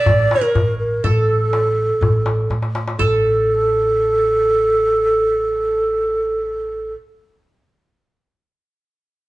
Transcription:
Already playing: qanun A4 D5 E5, ney D5
0.06 upright bass A1, darbuka dum
0.19 darbuka ka
0.31 darbuka tek
0.35 qanun C#5
0.41 qanun A#4, ney A#4
0.55 upright bass A1, darbuka dum
0.79 ney A#4
1.04 upright bass A1, ney A4, qanun A4, darbuka dum
1.53 darbuka tek
1.65 darbuka ka
2.01 upright bass A1, darbuka dum
2.14 darbuka ka
2.26 darbuka tek
2.50 upright bass A2, darbuka tek
2.62 darbuka ka
2.75 darbuka tek
2.88 darbuka ka
2.98 upright bass A1, ney A4, qanun A4, darbuka dum

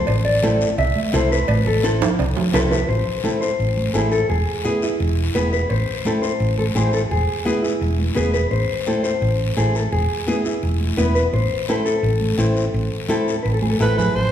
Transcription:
0.07 fingered electric bass A1, clean electric guitar C5, cowbell, long guiro
0.25 clean electric guitar D5
0.43 nylon-string guitar C4 E4 A4, cowbell, high conga, short guiro
0.61 short guiro
0.78 fingered electric bass C2, clean electric guitar E5, cowbell, long guiro
0.96 high conga
1.13 fingered electric bass C2, nylon-string guitar C4 E4 A4, clean electric guitar C5, cowbell, high conga, short guiro
1.32 clean electric guitar B4, short guiro
1.48 fingered electric bass A1, cowbell, high conga, long guiro
1.66 clean electric guitar A4, high conga
1.83 nylon-string guitar C4 E4 A4, cowbell, short guiro
2.01 low conga, high timbale, short guiro
2.19 fingered electric bass C2, cowbell, high timbale, long guiro
2.37 low conga, low timbale
2.53 fingered electric bass C2, nylon-string guitar C4 E4 A4, clean electric guitar B4, cowbell, low timbale, short guiro
2.71 clean electric guitar B4, low conga, low timbale, short guiro
2.89 fingered electric bass A1, clean electric guitar C5, long guiro
3.24 nylon-string guitar C4 E4 A4, high conga, short guiro
3.41 clean electric guitar C5, short guiro
3.60 fingered electric bass A1, long guiro
3.77 high conga
3.94 fingered electric bass A1, nylon-string guitar C4 E4 A4, clean electric guitar G#4, high conga, short guiro
4.12 clean electric guitar A4, short guiro
4.29 fingered electric bass E1, clean electric guitar G#4, long guiro
4.64 nylon-string guitar B3 E4 G#4, high conga, short guiro
4.82 clean electric guitar E4, short guiro
5.00 fingered electric bass E1, long guiro
5.35 fingered electric bass E1, nylon-string guitar B3 E4 G#4, clean electric guitar B4, high conga, short guiro
5.53 clean electric guitar B4, short guiro
5.70 fingered electric bass A1, clean electric guitar C5, long guiro
6.05 nylon-string guitar C4 E4 A4, high conga, short guiro
6.22 clean electric guitar C5, short guiro
6.40 fingered electric bass A1, long guiro
6.58 clean electric guitar A4, high conga
6.75 fingered electric bass A1, nylon-string guitar C4 E4 C5, clean electric guitar G#4, high conga, short guiro
6.93 clean electric guitar A4, short guiro
7.11 fingered electric bass E1, clean electric guitar G#4, long guiro
7.45 nylon-string guitar B3 E4 G#4, high conga, short guiro
7.63 clean electric guitar E4, short guiro
7.81 fingered electric bass E1, long guiro
7.99 high conga
8.15 fingered electric bass E1, nylon-string guitar B3 E4 G#4, clean electric guitar B4, high conga, short guiro
8.34 clean electric guitar B4, short guiro
8.51 fingered electric bass A1, clean electric guitar C5, long guiro
8.86 nylon-string guitar C4 E4 A4, high conga, short guiro
9.03 clean electric guitar C5, short guiro
9.22 fingered electric bass A1, long guiro
9.57 fingered electric bass A1, nylon-string guitar C4 E4 A4, clean electric guitar G#4, high conga, short guiro
9.75 clean electric guitar A4, short guiro
9.92 fingered electric bass E1, clean electric guitar G#4, long guiro
10.27 nylon-string guitar B3 E4 G#4, high conga, short guiro
10.45 clean electric guitar E4, short guiro
10.63 fingered electric bass E1, long guiro
10.81 high conga
10.97 fingered electric bass E1, nylon-string guitar B3 E4 B4, clean electric guitar B4, high conga, short guiro
11.15 clean electric guitar B4, short guiro
11.33 fingered electric bass A1, clean electric guitar C5, long guiro
11.68 nylon-string guitar C4 E4 A4, clean electric guitar B4, high conga, short guiro
11.85 clean electric guitar A4, short guiro
12.03 fingered electric bass A1, long guiro
12.21 high conga
12.38 fingered electric bass A1, nylon-string guitar C4 E4 C5, high conga, short guiro
12.57 short guiro
12.74 fingered electric bass A1, long guiro
13.09 nylon-string guitar C4 E4 A4, high conga, short guiro
13.28 short guiro
13.43 fingered electric bass A1, clean electric guitar B4, long guiro
13.54 clean electric guitar A4
13.62 clean electric guitar G#4, high conga
13.70 clean electric guitar A4
13.80 fingered electric bass A1, nylon-string guitar C4 E4 A4, clean electric guitar E4, alto saxophone B4, high conga, short guiro
13.98 clean electric guitar G#4, alto saxophone B4, low conga, short guiro
14.15 fingered electric bass A1, clean electric guitar A4, alto saxophone C5, long guiro

